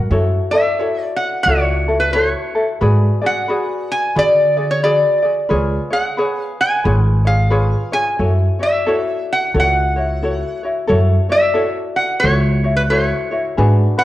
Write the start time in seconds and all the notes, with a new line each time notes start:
Already playing: F#4 A#4 F#5
0.11 F#2 E4 F#4 A4 C#5
0.51 E4 A4 E5
0.55 F#4
0.79 E4 F#4 A4 C#5
1.04 D5
1.17 F#5
1.43 C#2 C#5
1.47 E4 F#4 A4
1.88 E4 F#4 A4
2.00 B4
2.13 E4 F#4 A4 C5 C#5
2.30 C#5
2.55 E4 F#4 A4
2.81 G#2 F#4 G#4 B4 D5
3.21 F#4 G#4 D5
3.26 F#5
3.48 F#4 G#4 B4 D5
3.91 G#5
4.15 D3 F#4 G#4 B4 D5
4.57 F#4 G#4 D5
4.71 C#5
4.83 F#4 G#4 B4 D5
5.22 F#4 G#4 D5
5.49 C#2 F4 G#4 B4 C#5
5.90 G#4 C#5 F#5
6.17 G#4 B4 C#5
6.41 F5
6.61 G#5
6.84 G#1 F4 G#4 B4 C#5
7.25 F4 G#4 C#5 F5
7.50 F4 G#4 B4 C#5
7.92 F4 G#4 C#5 G#5
8.19 F#2 E4 F#4 A4 C#5
8.59 E4 F#4 C#5 E5
8.86 E4 F#4 A4 C#5
9.32 F#5
9.54 C#2 E4 F#4 A4 C#5
9.60 F#5
9.96 E4 F#4 C#5
10.22 E4 F#4 A4 C#5
10.63 E4 F#4 C#5
10.87 F#2 E4 F#4 A4 C#5
11.29 E4 F#4 C#5 E5
11.54 E4 F#4 A4 C#5
11.96 F#5
12.20 E4 A4 C#5
12.24 C#2 F#4 C#5
12.64 E4 F#4 C#5
12.77 B4
12.90 E4 F#4 A4 C5 C#5
13.07 C#5
13.31 E4 F#4 C#5
13.57 G#2 D4 F#4 G#4 B4
13.98 D4 F#4 B4 F#5